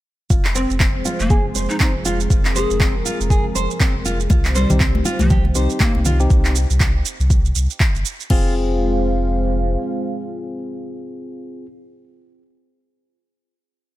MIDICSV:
0, 0, Header, 1, 7, 480
1, 0, Start_track
1, 0, Key_signature, -4, "minor"
1, 0, Tempo, 500000
1, 293, Time_signature, 4, 2, 24, 8
1, 13402, End_track
2, 0, Start_track
2, 0, Title_t, "Nylon-string guitar"
2, 0, Program_c, 0, 24
2, 290, Note_on_c, 0, 65, 75
2, 425, Note_off_c, 0, 65, 0
2, 530, Note_on_c, 0, 72, 73
2, 658, Note_off_c, 0, 72, 0
2, 768, Note_on_c, 0, 60, 80
2, 897, Note_off_c, 0, 60, 0
2, 1010, Note_on_c, 0, 65, 96
2, 1138, Note_off_c, 0, 65, 0
2, 1251, Note_on_c, 0, 68, 81
2, 1386, Note_off_c, 0, 68, 0
2, 1491, Note_on_c, 0, 72, 69
2, 1618, Note_off_c, 0, 72, 0
2, 1733, Note_on_c, 0, 60, 75
2, 1860, Note_off_c, 0, 60, 0
2, 1972, Note_on_c, 0, 65, 92
2, 2099, Note_off_c, 0, 65, 0
2, 2212, Note_on_c, 0, 65, 77
2, 2346, Note_off_c, 0, 65, 0
2, 2453, Note_on_c, 0, 72, 76
2, 2580, Note_off_c, 0, 72, 0
2, 2691, Note_on_c, 0, 60, 85
2, 2819, Note_off_c, 0, 60, 0
2, 2932, Note_on_c, 0, 65, 94
2, 3059, Note_off_c, 0, 65, 0
2, 3171, Note_on_c, 0, 68, 79
2, 3306, Note_off_c, 0, 68, 0
2, 3410, Note_on_c, 0, 72, 73
2, 3538, Note_off_c, 0, 72, 0
2, 3653, Note_on_c, 0, 60, 74
2, 3779, Note_off_c, 0, 60, 0
2, 3892, Note_on_c, 0, 65, 98
2, 4019, Note_off_c, 0, 65, 0
2, 4131, Note_on_c, 0, 65, 83
2, 4266, Note_off_c, 0, 65, 0
2, 4372, Note_on_c, 0, 72, 77
2, 4499, Note_off_c, 0, 72, 0
2, 4614, Note_on_c, 0, 60, 86
2, 4740, Note_off_c, 0, 60, 0
2, 4851, Note_on_c, 0, 65, 103
2, 4979, Note_off_c, 0, 65, 0
2, 5092, Note_on_c, 0, 67, 81
2, 5226, Note_off_c, 0, 67, 0
2, 5331, Note_on_c, 0, 72, 71
2, 5458, Note_off_c, 0, 72, 0
2, 5571, Note_on_c, 0, 60, 75
2, 5699, Note_off_c, 0, 60, 0
2, 5813, Note_on_c, 0, 65, 95
2, 5940, Note_off_c, 0, 65, 0
2, 7971, Note_on_c, 0, 65, 95
2, 8195, Note_off_c, 0, 65, 0
2, 13402, End_track
3, 0, Start_track
3, 0, Title_t, "Tine electric piano"
3, 0, Program_c, 1, 4
3, 4513, Note_on_c, 1, 63, 69
3, 4514, Note_on_c, 1, 60, 76
3, 4514, Note_on_c, 1, 67, 85
3, 4630, Note_off_c, 1, 60, 0
3, 4630, Note_off_c, 1, 63, 0
3, 4631, Note_off_c, 1, 67, 0
3, 5330, Note_on_c, 1, 60, 78
3, 5331, Note_on_c, 1, 63, 72
3, 5331, Note_on_c, 1, 67, 81
3, 5919, Note_off_c, 1, 60, 0
3, 5919, Note_off_c, 1, 63, 0
3, 5919, Note_off_c, 1, 67, 0
3, 5950, Note_on_c, 1, 60, 71
3, 5951, Note_on_c, 1, 63, 70
3, 5951, Note_on_c, 1, 67, 84
3, 6291, Note_off_c, 1, 60, 0
3, 6291, Note_off_c, 1, 63, 0
3, 6291, Note_off_c, 1, 67, 0
3, 7971, Note_on_c, 1, 65, 83
3, 7971, Note_on_c, 1, 68, 92
3, 7972, Note_on_c, 1, 60, 88
3, 11188, Note_off_c, 1, 65, 0
3, 11188, Note_off_c, 1, 68, 0
3, 11189, Note_off_c, 1, 60, 0
3, 13402, End_track
4, 0, Start_track
4, 0, Title_t, "Analog synth pad"
4, 0, Program_c, 2, 89
4, 293, Note_on_c, 2, 60, 75
4, 293, Note_on_c, 2, 68, 75
4, 294, Note_on_c, 2, 56, 76
4, 294, Note_on_c, 2, 72, 93
4, 295, Note_on_c, 2, 53, 83
4, 2194, Note_off_c, 2, 72, 0
4, 2216, Note_on_c, 2, 70, 93
4, 4094, Note_off_c, 2, 60, 0
4, 4094, Note_off_c, 2, 68, 0
4, 4095, Note_off_c, 2, 56, 0
4, 4096, Note_off_c, 2, 53, 0
4, 4115, Note_off_c, 2, 70, 0
4, 4129, Note_on_c, 2, 55, 73
4, 4130, Note_on_c, 2, 67, 76
4, 4131, Note_on_c, 2, 51, 81
4, 4132, Note_on_c, 2, 60, 77
4, 4133, Note_on_c, 2, 72, 92
4, 6031, Note_off_c, 2, 55, 0
4, 6032, Note_off_c, 2, 67, 0
4, 6033, Note_off_c, 2, 51, 0
4, 6033, Note_off_c, 2, 60, 0
4, 6034, Note_off_c, 2, 72, 0
4, 7973, Note_on_c, 2, 72, 78
4, 7974, Note_on_c, 2, 56, 81
4, 7974, Note_on_c, 2, 60, 80
4, 7974, Note_on_c, 2, 65, 74
4, 7974, Note_on_c, 2, 77, 93
4, 11190, Note_off_c, 2, 72, 0
4, 11191, Note_off_c, 2, 56, 0
4, 11191, Note_off_c, 2, 60, 0
4, 11191, Note_off_c, 2, 65, 0
4, 11191, Note_off_c, 2, 77, 0
4, 13402, End_track
5, 0, Start_track
5, 0, Title_t, "Pan flute"
5, 0, Program_c, 3, 75
5, 532, Note_on_c, 3, 60, 85
5, 715, Note_off_c, 3, 60, 0
5, 1151, Note_on_c, 3, 58, 89
5, 1311, Note_off_c, 3, 58, 0
5, 1626, Note_on_c, 3, 63, 86
5, 1693, Note_off_c, 3, 63, 0
5, 1729, Note_on_c, 3, 63, 75
5, 1821, Note_off_c, 3, 63, 0
5, 2451, Note_on_c, 3, 68, 90
5, 2833, Note_off_c, 3, 68, 0
5, 4371, Note_on_c, 3, 55, 87
5, 4555, Note_off_c, 3, 55, 0
5, 4993, Note_on_c, 3, 53, 92
5, 5153, Note_off_c, 3, 53, 0
5, 5572, Note_on_c, 3, 58, 89
5, 5756, Note_off_c, 3, 58, 0
5, 13402, End_track
6, 0, Start_track
6, 0, Title_t, "Sub bass"
6, 0, Program_c, 4, 38
6, 291, Note_on_c, 4, 29, 96
6, 630, Note_off_c, 4, 29, 0
6, 673, Note_on_c, 4, 29, 86
6, 982, Note_off_c, 4, 29, 0
6, 1152, Note_on_c, 4, 29, 95
6, 1462, Note_off_c, 4, 29, 0
6, 1491, Note_on_c, 4, 29, 76
6, 1606, Note_off_c, 4, 29, 0
6, 1874, Note_on_c, 4, 29, 86
6, 2183, Note_off_c, 4, 29, 0
6, 2211, Note_on_c, 4, 29, 101
6, 2551, Note_off_c, 4, 29, 0
6, 2595, Note_on_c, 4, 29, 88
6, 2904, Note_off_c, 4, 29, 0
6, 3074, Note_on_c, 4, 29, 93
6, 3383, Note_off_c, 4, 29, 0
6, 3413, Note_on_c, 4, 29, 80
6, 3527, Note_off_c, 4, 29, 0
6, 3794, Note_on_c, 4, 29, 82
6, 4103, Note_off_c, 4, 29, 0
6, 4132, Note_on_c, 4, 36, 94
6, 4471, Note_off_c, 4, 36, 0
6, 4514, Note_on_c, 4, 36, 93
6, 4823, Note_off_c, 4, 36, 0
6, 4993, Note_on_c, 4, 36, 94
6, 5303, Note_off_c, 4, 36, 0
6, 5333, Note_on_c, 4, 36, 81
6, 5447, Note_off_c, 4, 36, 0
6, 5713, Note_on_c, 4, 36, 86
6, 6022, Note_off_c, 4, 36, 0
6, 6052, Note_on_c, 4, 36, 101
6, 6391, Note_off_c, 4, 36, 0
6, 6433, Note_on_c, 4, 36, 94
6, 6743, Note_off_c, 4, 36, 0
6, 6910, Note_on_c, 4, 36, 94
6, 7221, Note_off_c, 4, 36, 0
6, 7253, Note_on_c, 4, 36, 80
6, 7367, Note_off_c, 4, 36, 0
6, 7633, Note_on_c, 4, 31, 86
6, 7714, Note_off_c, 4, 31, 0
6, 7973, Note_on_c, 4, 29, 98
6, 9374, Note_off_c, 4, 29, 0
6, 13402, End_track
7, 0, Start_track
7, 0, Title_t, "Drums"
7, 291, Note_on_c, 9, 36, 114
7, 293, Note_on_c, 9, 82, 52
7, 387, Note_off_c, 9, 36, 0
7, 389, Note_off_c, 9, 82, 0
7, 430, Note_on_c, 9, 39, 63
7, 432, Note_on_c, 9, 82, 36
7, 526, Note_off_c, 9, 39, 0
7, 528, Note_off_c, 9, 82, 0
7, 531, Note_on_c, 9, 82, 84
7, 627, Note_off_c, 9, 82, 0
7, 675, Note_on_c, 9, 82, 38
7, 769, Note_on_c, 9, 39, 108
7, 771, Note_off_c, 9, 82, 0
7, 771, Note_on_c, 9, 36, 113
7, 771, Note_on_c, 9, 82, 51
7, 865, Note_off_c, 9, 39, 0
7, 867, Note_off_c, 9, 36, 0
7, 867, Note_off_c, 9, 82, 0
7, 1009, Note_on_c, 9, 82, 91
7, 1105, Note_off_c, 9, 82, 0
7, 1150, Note_on_c, 9, 82, 39
7, 1246, Note_off_c, 9, 82, 0
7, 1250, Note_on_c, 9, 82, 53
7, 1251, Note_on_c, 9, 36, 119
7, 1346, Note_off_c, 9, 82, 0
7, 1347, Note_off_c, 9, 36, 0
7, 1490, Note_on_c, 9, 82, 86
7, 1586, Note_off_c, 9, 82, 0
7, 1633, Note_on_c, 9, 82, 38
7, 1728, Note_on_c, 9, 39, 106
7, 1729, Note_off_c, 9, 82, 0
7, 1730, Note_on_c, 9, 82, 50
7, 1732, Note_on_c, 9, 36, 103
7, 1824, Note_off_c, 9, 39, 0
7, 1826, Note_off_c, 9, 82, 0
7, 1828, Note_off_c, 9, 36, 0
7, 1971, Note_on_c, 9, 82, 86
7, 2067, Note_off_c, 9, 82, 0
7, 2115, Note_on_c, 9, 82, 40
7, 2211, Note_off_c, 9, 82, 0
7, 2212, Note_on_c, 9, 36, 117
7, 2215, Note_on_c, 9, 82, 55
7, 2308, Note_off_c, 9, 36, 0
7, 2311, Note_off_c, 9, 82, 0
7, 2354, Note_on_c, 9, 39, 60
7, 2356, Note_on_c, 9, 82, 35
7, 2450, Note_off_c, 9, 39, 0
7, 2452, Note_off_c, 9, 82, 0
7, 2455, Note_on_c, 9, 82, 91
7, 2551, Note_off_c, 9, 82, 0
7, 2596, Note_on_c, 9, 82, 40
7, 2691, Note_on_c, 9, 36, 111
7, 2692, Note_off_c, 9, 82, 0
7, 2695, Note_on_c, 9, 39, 107
7, 2697, Note_on_c, 9, 82, 55
7, 2787, Note_off_c, 9, 36, 0
7, 2791, Note_off_c, 9, 39, 0
7, 2793, Note_off_c, 9, 82, 0
7, 2936, Note_on_c, 9, 82, 96
7, 3032, Note_off_c, 9, 82, 0
7, 3080, Note_on_c, 9, 82, 40
7, 3171, Note_on_c, 9, 36, 119
7, 3176, Note_off_c, 9, 82, 0
7, 3178, Note_on_c, 9, 82, 54
7, 3267, Note_off_c, 9, 36, 0
7, 3274, Note_off_c, 9, 82, 0
7, 3416, Note_on_c, 9, 82, 93
7, 3512, Note_off_c, 9, 82, 0
7, 3558, Note_on_c, 9, 82, 39
7, 3651, Note_on_c, 9, 36, 109
7, 3653, Note_on_c, 9, 39, 107
7, 3654, Note_off_c, 9, 82, 0
7, 3655, Note_on_c, 9, 82, 51
7, 3747, Note_off_c, 9, 36, 0
7, 3749, Note_off_c, 9, 39, 0
7, 3751, Note_off_c, 9, 82, 0
7, 3892, Note_on_c, 9, 82, 90
7, 3988, Note_off_c, 9, 82, 0
7, 4034, Note_on_c, 9, 82, 41
7, 4127, Note_on_c, 9, 63, 114
7, 4129, Note_on_c, 9, 64, 87
7, 4130, Note_off_c, 9, 82, 0
7, 4130, Note_on_c, 9, 62, 54
7, 4131, Note_on_c, 9, 82, 53
7, 4132, Note_on_c, 9, 36, 125
7, 4223, Note_off_c, 9, 63, 0
7, 4225, Note_off_c, 9, 64, 0
7, 4226, Note_off_c, 9, 62, 0
7, 4227, Note_off_c, 9, 82, 0
7, 4228, Note_off_c, 9, 36, 0
7, 4272, Note_on_c, 9, 39, 64
7, 4274, Note_on_c, 9, 82, 39
7, 4368, Note_off_c, 9, 39, 0
7, 4370, Note_off_c, 9, 82, 0
7, 4371, Note_on_c, 9, 82, 92
7, 4467, Note_off_c, 9, 82, 0
7, 4511, Note_on_c, 9, 64, 92
7, 4513, Note_on_c, 9, 63, 62
7, 4513, Note_on_c, 9, 82, 41
7, 4515, Note_on_c, 9, 62, 39
7, 4607, Note_off_c, 9, 64, 0
7, 4609, Note_off_c, 9, 63, 0
7, 4609, Note_off_c, 9, 82, 0
7, 4610, Note_on_c, 9, 39, 102
7, 4611, Note_off_c, 9, 62, 0
7, 4612, Note_on_c, 9, 82, 54
7, 4613, Note_on_c, 9, 36, 120
7, 4706, Note_off_c, 9, 39, 0
7, 4708, Note_off_c, 9, 82, 0
7, 4709, Note_off_c, 9, 36, 0
7, 4752, Note_on_c, 9, 63, 99
7, 4848, Note_off_c, 9, 63, 0
7, 4850, Note_on_c, 9, 82, 95
7, 4851, Note_on_c, 9, 62, 51
7, 4946, Note_off_c, 9, 82, 0
7, 4947, Note_off_c, 9, 62, 0
7, 4985, Note_on_c, 9, 63, 111
7, 4991, Note_on_c, 9, 82, 42
7, 5081, Note_off_c, 9, 63, 0
7, 5087, Note_off_c, 9, 82, 0
7, 5090, Note_on_c, 9, 82, 55
7, 5092, Note_on_c, 9, 36, 123
7, 5092, Note_on_c, 9, 64, 81
7, 5186, Note_off_c, 9, 82, 0
7, 5188, Note_off_c, 9, 36, 0
7, 5188, Note_off_c, 9, 64, 0
7, 5231, Note_on_c, 9, 62, 40
7, 5327, Note_off_c, 9, 62, 0
7, 5329, Note_on_c, 9, 82, 93
7, 5425, Note_off_c, 9, 82, 0
7, 5470, Note_on_c, 9, 82, 41
7, 5566, Note_off_c, 9, 82, 0
7, 5569, Note_on_c, 9, 39, 107
7, 5571, Note_on_c, 9, 82, 53
7, 5572, Note_on_c, 9, 36, 110
7, 5572, Note_on_c, 9, 63, 97
7, 5574, Note_on_c, 9, 62, 50
7, 5665, Note_off_c, 9, 39, 0
7, 5667, Note_off_c, 9, 82, 0
7, 5668, Note_off_c, 9, 36, 0
7, 5668, Note_off_c, 9, 63, 0
7, 5670, Note_off_c, 9, 62, 0
7, 5710, Note_on_c, 9, 63, 65
7, 5806, Note_off_c, 9, 63, 0
7, 5810, Note_on_c, 9, 82, 96
7, 5815, Note_on_c, 9, 64, 87
7, 5906, Note_off_c, 9, 82, 0
7, 5911, Note_off_c, 9, 64, 0
7, 5952, Note_on_c, 9, 82, 42
7, 6048, Note_off_c, 9, 82, 0
7, 6052, Note_on_c, 9, 36, 127
7, 6052, Note_on_c, 9, 82, 55
7, 6148, Note_off_c, 9, 36, 0
7, 6148, Note_off_c, 9, 82, 0
7, 6191, Note_on_c, 9, 39, 60
7, 6193, Note_on_c, 9, 82, 38
7, 6287, Note_off_c, 9, 39, 0
7, 6289, Note_off_c, 9, 82, 0
7, 6293, Note_on_c, 9, 82, 97
7, 6389, Note_off_c, 9, 82, 0
7, 6435, Note_on_c, 9, 82, 41
7, 6531, Note_off_c, 9, 82, 0
7, 6531, Note_on_c, 9, 36, 123
7, 6532, Note_on_c, 9, 39, 102
7, 6534, Note_on_c, 9, 82, 55
7, 6627, Note_off_c, 9, 36, 0
7, 6628, Note_off_c, 9, 39, 0
7, 6630, Note_off_c, 9, 82, 0
7, 6774, Note_on_c, 9, 82, 99
7, 6870, Note_off_c, 9, 82, 0
7, 6916, Note_on_c, 9, 82, 44
7, 7011, Note_on_c, 9, 36, 118
7, 7012, Note_off_c, 9, 82, 0
7, 7014, Note_on_c, 9, 82, 55
7, 7107, Note_off_c, 9, 36, 0
7, 7110, Note_off_c, 9, 82, 0
7, 7155, Note_on_c, 9, 82, 40
7, 7251, Note_off_c, 9, 82, 0
7, 7253, Note_on_c, 9, 82, 98
7, 7349, Note_off_c, 9, 82, 0
7, 7395, Note_on_c, 9, 82, 40
7, 7491, Note_off_c, 9, 82, 0
7, 7491, Note_on_c, 9, 36, 117
7, 7491, Note_on_c, 9, 39, 106
7, 7493, Note_on_c, 9, 82, 54
7, 7587, Note_off_c, 9, 36, 0
7, 7587, Note_off_c, 9, 39, 0
7, 7589, Note_off_c, 9, 82, 0
7, 7633, Note_on_c, 9, 82, 38
7, 7729, Note_off_c, 9, 82, 0
7, 7732, Note_on_c, 9, 82, 95
7, 7828, Note_off_c, 9, 82, 0
7, 7874, Note_on_c, 9, 82, 42
7, 7968, Note_on_c, 9, 49, 82
7, 7970, Note_off_c, 9, 82, 0
7, 7971, Note_on_c, 9, 36, 113
7, 8064, Note_off_c, 9, 49, 0
7, 8067, Note_off_c, 9, 36, 0
7, 13402, End_track
0, 0, End_of_file